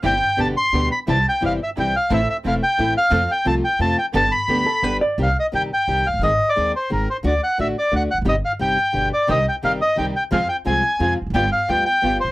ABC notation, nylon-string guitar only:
X:1
M:3/4
L:1/16
Q:1/4=176
K:Gmix
V:1 name="Nylon-string guitar"
[G,CE] z3 [B,,D,G,B,G]2 z2 [B,,D,G,B,G]2 z2 | [C,E,G,CE] z3 [C,E,G,CE]2 z2 [C,E,G,CE]2 z2 | [E,A,CE] z3 [E,A,CE]2 z2 [E,A,CE]2 z2 | [C,F,A,CF] z3 [C,F,A,CF]2 z2 [C,F,A,CF]2 z2 |
[D,G,B,G] z3 [D,G,B,G]2 z2 [D,G,B,G]2 z2 | [K:Cm] [C,E,G,CG] z3 [C,E,G,CG]2 z2 [C,E,G,CG]2 z2 | [E,A,CA] z3 [E,A,CA]2 z2 [E,A,CA]2 z2 | [D,=A,D^F] z3 [D,A,DF]2 z2 [D,A,DF]2 z2 |
[C,G,CEG] z3 [C,G,CEG]2 z2 [=B,,D,G,=B,G]2 z2 | [C,E,G,CG] z3 [C,E,G,CG]2 z2 [C,E,G,CG]2 z2 | [C,F,A,CF] z3 [C,F,A,CF]2 z2 [C,F,A,CF]2 z2 | [G,=B,F] z3 [G,B,F]2 z2 [G,B,F]2 z2 |]